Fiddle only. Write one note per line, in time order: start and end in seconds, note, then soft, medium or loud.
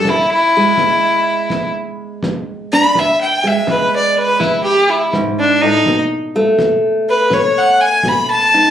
0.00 0.10 A4 medium
0.09 0.31 E4 medium
0.32 1.71 E4 loud
2.73 3.01 B5 loud
2.99 3.20 E5 loud
3.21 3.48 G5 medium
3.47 3.69 E5 medium
3.70 3.93 B4 medium
3.96 4.17 D5 medium
4.18 4.41 B4 medium
4.40 4.63 E4 medium
4.64 4.91 G4 medium
4.89 5.12 E4 medium
5.39 5.62 D4 medium
5.61 6.00 D#4 loud
7.09 7.35 B4 medium
7.33 7.59 C#5 medium
7.58 7.82 F#5 medium
7.81 8.09 G#5 medium
8.08 8.29 B5 medium
8.30 8.71 A5 loud